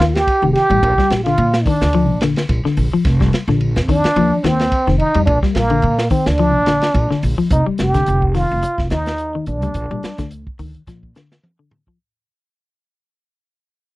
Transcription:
0.00 0.23 D#2 medium
0.00 0.21 D#3 medium
0.00 0.16 F4 loud
0.00 snare medium
0.00 ride bell medium
0.14 0.52 G4 loud
0.14 snare medium
0.14 ride bell medium
0.27 kick medium
0.27 ride bell medium
0.42 0.53 F1 medium
0.42 0.64 D#3 medium
0.53 1.21 G4 loud
0.53 snare soft
0.53 ride bell medium
0.70 0.81 A1 medium
0.70 0.80 G3 medium
0.70 ride bell medium
0.83 0.96 A#1 loud
0.83 kick medium
0.83 ride bell medium
0.98 1.20 G3 medium
0.98 muted upright bass stroke soft
0.98 kick medium
0.98 snare soft
1.10 1.35 A#1 medium
1.10 snare medium
1.10 ride bell medium
1.24 1.48 D3 medium
1.24 1.67 F4 loud
1.24 snare soft
1.24 ride bell medium
1.38 1.62 A#2 loud
1.38 ride bell medium
1.54 snare medium
1.65 1.88 D#3 medium
1.65 2.21 D4 medium
1.65 kick medium
1.65 open hi-hat medium
1.81 2.09 D2 medium
1.81 snare medium
1.93 2.16 F3 medium
1.93 ride bell medium
2.09 2.33 A#1 medium
2.21 2.44 D3 medium
2.21 snare medium
2.21 ride bell medium
2.36 snare medium
2.36 ride bell medium
2.49 2.63 A#1 medium
2.49 kick medium
2.49 ride bell medium
2.65 2.87 D3 medium
2.65 muted upright bass stroke soft
2.65 snare soft
2.77 2.91 A#1 medium
2.77 open hi-hat medium
2.93 3.03 F3 medium
2.93 muted upright bass stroke soft
3.05 3.29 F1 loud
3.05 kick loud
3.05 snare soft
3.05 ride bell medium
3.20 3.42 G3 medium
3.20 kick medium
3.20 snare soft
3.33 snare medium
3.33 ride bell medium
3.48 3.77 A#1 loud
3.48 3.70 D3 medium
3.48 snare soft
3.61 ride bell medium
3.76 4.00 F2 medium
3.76 snare medium
3.88 4.10 D#3 medium
3.88 4.45 D4 loud
3.88 kick medium
3.88 open hi-hat medium
4.04 muted upright bass stroke soft
4.04 snare medium
4.04 ride bell medium
4.16 4.30 D#2 loud
4.16 4.38 F3 loud
4.16 ride bell medium
4.44 4.68 D#2 medium
4.44 4.66 D#3 medium
4.44 4.98 C4 loud
4.44 snare medium
4.44 ride bell medium
4.59 snare medium
4.59 ride bell medium
4.72 kick medium
4.72 ride bell medium
4.87 4.98 F1 medium
4.87 5.09 D#3 medium
4.87 snare soft
4.98 5.25 D#4 loud
4.98 ride bell medium
5.14 5.26 F2 medium
5.14 5.25 G3 medium
5.14 ride bell medium
5.26 5.41 A#1 loud
5.26 5.39 D4 loud
5.26 kick loud
5.26 ride bell medium
5.43 5.65 G3 medium
5.43 muted upright bass stroke soft
5.43 kick medium
5.43 snare soft
5.54 5.80 A#1 medium
5.54 6.07 A#3 loud
5.54 snare medium
5.54 ride bell medium
5.70 5.92 D3 medium
5.70 ride bell medium
5.82 6.08 A#2 loud
5.82 ride bell medium
5.98 snare medium
6.10 6.33 D#3 medium
6.10 6.29 C4 medium
6.10 kick medium
6.10 open hi-hat medium
6.26 6.55 D2 medium
6.26 7.23 D4 loud
6.26 snare medium
6.38 6.61 F3 medium
6.38 ride bell soft
6.55 6.79 A#1 medium
6.66 6.89 D3 medium
6.66 snare medium
6.66 ride bell medium
6.81 snare medium
6.81 ride bell medium
6.94 7.08 A#1 medium
6.94 kick medium
6.94 ride bell medium
7.11 7.32 D3 medium
7.11 muted upright bass stroke soft
7.11 snare soft
7.23 7.37 A#1 medium
7.23 open hi-hat medium
7.38 7.48 F3 medium
7.38 muted upright bass stroke soft
7.50 7.64 F1 medium
7.50 7.65 D#4 medium
7.50 kick medium
7.50 closed hi-hat medium
7.66 7.88 G3 medium
7.66 muted upright bass stroke soft
7.78 8.04 F1 medium
7.78 8.32 G4 loud
7.78 snare medium
7.78 closed hi-hat medium
7.94 8.16 D3 medium
7.94 kick medium
7.94 snare soft
7.94 closed hi-hat medium
8.06 8.45 F1 medium
8.06 closed hi-hat medium
8.22 kick medium
8.34 8.56 D#3 medium
8.34 8.88 F4 loud
8.34 snare soft
8.34 open hi-hat medium
8.51 8.62 F1 medium
8.62 muted clean electric guitar stroke medium
8.62 closed hi-hat medium
8.78 8.89 F1 medium
8.78 kick medium
8.78 snare soft
8.90 9.40 D#2 medium
8.90 9.13 D#3 medium
8.90 9.43 D#4 loud
8.90 snare medium
8.90 closed hi-hat medium
9.06 snare medium
9.06 closed hi-hat medium
9.18 closed hi-hat medium
9.35 9.57 D#3 medium
9.46 9.63 A#1 medium
9.46 10.28 D4 medium
9.46 closed hi-hat medium
9.62 9.74 D2 medium
9.62 9.73 G3 medium
9.62 closed hi-hat soft
9.74 9.88 A#1 loud
9.74 kick medium
9.74 closed hi-hat medium
9.91 10.02 A#1 medium
9.91 10.13 G3 medium
10.03 muted upright bass stroke soft
10.03 snare medium
10.03 closed hi-hat soft
10.18 10.43 D2 medium
10.18 10.40 D3 medium
10.18 kick medium
10.18 snare soft
10.18 closed hi-hat soft
10.31 closed hi-hat medium
10.47 kick medium
10.59 10.73 D2 medium
10.59 10.81 D#3 medium
10.59 open hi-hat medium
10.74 muted upright bass stroke soft
10.74 closed hi-hat medium
10.87 11.12 A#2 medium
10.87 11.09 F3 medium
10.87 kick medium
10.87 snare soft
10.87 closed hi-hat medium
11.03 kick medium
11.15 11.38 D3 medium
11.15 snare medium
11.15 closed hi-hat soft
11.32 snare medium
11.43 high tom soft
11.59 11.81 D3 medium
11.71 mid tom medium
11.87 11.97 F3 medium
11.87 kick medium

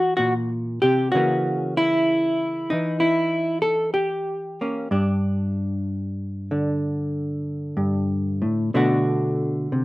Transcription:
0.00 1.11 E3 soft
0.00 0.16 F#4 medium
0.17 0.83 A#2 medium
0.17 0.33 F#4 medium
0.82 1.14 C3 medium
0.82 1.11 G4 medium
1.12 2.72 C#3 medium
1.12 2.71 E3 soft
1.12 1.77 F#4 medium
1.16 4.60 A#3 soft
1.16 2.70 C#4 soft
1.77 2.99 E4 medium
2.70 4.87 E3 medium
2.70 3.95 D#4 medium
3.00 3.61 E4 medium
3.62 3.93 A4 medium
3.94 8.74 G4 medium
4.61 4.88 A#3 soft
4.61 4.88 C#4 soft
4.91 7.76 G2 medium
4.91 8.71 D4 soft
6.51 8.73 D3 medium
7.77 8.43 G2 medium
8.42 8.74 A2 medium
8.74 9.72 B2 medium
8.74 9.85 D3 medium
8.74 9.85 A3 medium
8.74 9.85 D4 soft
8.74 9.85 F#4 medium
9.72 9.85 C3 medium

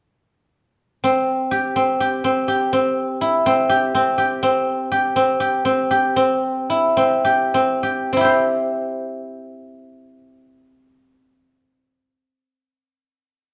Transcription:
1.04 1.75 C4 medium
1.51 2.00 G4 medium
1.76 2.24 C4 medium
2.00 2.48 G4 medium
2.24 2.72 C4 medium
2.48 3.69 G4 medium
2.73 3.46 C4 medium
3.21 5.82 E4 medium
3.46 3.94 C4 medium
3.69 4.18 G4 medium
3.95 4.42 C4 medium
4.18 4.91 G4 medium
4.43 5.16 C4 medium
4.92 5.40 G4 medium
5.16 5.65 C4 medium
5.40 5.90 G4 medium
5.65 6.16 C4 medium
5.91 7.24 G4 medium
6.16 6.96 C4 medium
6.70 8.16 E4 medium
6.97 7.54 C4 medium
7.25 7.83 G4 medium
7.54 8.12 C4 medium
7.83 8.20 G4 medium
8.13 11.45 C4 medium
8.17 11.49 E4 medium
8.21 11.53 G4 medium
8.21 11.57 C5 soft

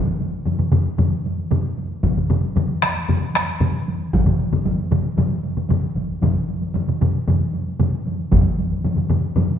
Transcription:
0.08 taiko high soft
0.20 taiko high soft
0.45 taiko low-mid medium
0.45 taiko mid medium
0.45 taiko high medium
0.59 taiko low-mid medium
0.59 taiko mid medium
0.59 taiko high soft
0.72 taiko low-mid medium
0.72 taiko mid medium
0.72 taiko high soft
0.86 taiko high soft
0.98 taiko low-mid medium
0.98 taiko mid medium
0.98 taiko high medium
1.13 taiko high soft
1.26 taiko high soft
1.38 taiko high soft
1.51 taiko low-mid medium
1.51 taiko mid medium
1.51 taiko high medium
1.65 taiko high soft
1.77 taiko high soft
1.91 taiko high soft
2.03 taiko medium
2.03 taiko low-mid medium
2.03 taiko mid medium
2.03 taiko high medium
2.17 taiko low-mid medium
2.17 taiko mid medium
2.17 taiko high soft
2.29 taiko low-mid medium
2.29 taiko mid medium
2.29 taiko high soft
2.43 taiko high soft
2.56 taiko low-mid medium
2.56 taiko mid medium
2.56 taiko high medium
2.69 taiko high soft
2.82 taiko rim medium
2.82 taiko high medium
2.96 taiko high soft
3.09 taiko low-mid medium
3.09 taiko mid medium
3.09 taiko high medium
3.22 taiko high soft
3.35 taiko rim medium
3.35 taiko high soft
3.48 taiko high soft
3.60 taiko low-mid medium
3.60 taiko mid medium
3.60 taiko high medium
3.74 taiko high soft
3.87 taiko high soft
4.00 taiko high soft
4.13 taiko medium
4.13 taiko high medium
4.26 taiko low-mid medium
4.26 taiko mid medium
4.26 taiko high soft
4.39 taiko high medium
4.52 taiko low-mid medium
4.52 taiko mid medium
4.52 taiko high soft
4.65 taiko medium
4.65 taiko high medium
4.79 taiko high soft
4.91 taiko low-mid medium
4.91 taiko mid medium
4.91 taiko high medium
5.05 taiko high soft
5.17 taiko low-mid medium
5.17 taiko mid medium
5.17 taiko high medium
5.31 taiko high soft
5.44 taiko high soft
5.57 taiko low-mid medium
5.57 taiko mid medium
5.57 taiko high soft
5.69 taiko low-mid medium
5.69 taiko mid medium
5.69 taiko high medium
5.83 taiko high soft
5.95 taiko medium
5.95 taiko high soft
6.09 taiko high soft
6.22 taiko medium
6.22 taiko low-mid medium
6.22 taiko mid medium
6.22 taiko high medium
6.35 taiko high soft
6.48 taiko high soft
6.62 taiko high soft
6.74 taiko low-mid medium
6.74 taiko mid medium
6.74 taiko high medium
6.88 taiko low-mid medium
6.88 taiko mid medium
6.88 taiko high soft
7.01 taiko low-mid medium
7.01 taiko mid medium
7.01 taiko high medium
7.14 taiko high soft
7.28 taiko low-mid medium
7.28 taiko mid medium
7.28 taiko high medium
7.41 taiko high soft
7.53 taiko high soft
7.67 taiko high soft
7.80 taiko low-mid medium
7.80 taiko mid medium
7.80 taiko high medium
7.93 taiko high soft
8.06 taiko high soft
8.19 taiko high soft
8.32 taiko medium
8.32 taiko low-mid medium
8.32 taiko mid medium
8.32 taiko high medium
8.59 taiko high medium
8.72 taiko high soft
8.84 taiko low-mid medium
8.84 taiko mid medium
8.84 taiko high medium
8.97 taiko low-mid medium
8.97 taiko mid medium
8.97 taiko high soft
9.10 taiko low-mid medium
9.10 taiko mid medium
9.10 taiko high soft
9.24 taiko high soft
9.36 taiko low-mid medium
9.36 taiko mid medium
9.36 taiko high medium
9.51 taiko high soft

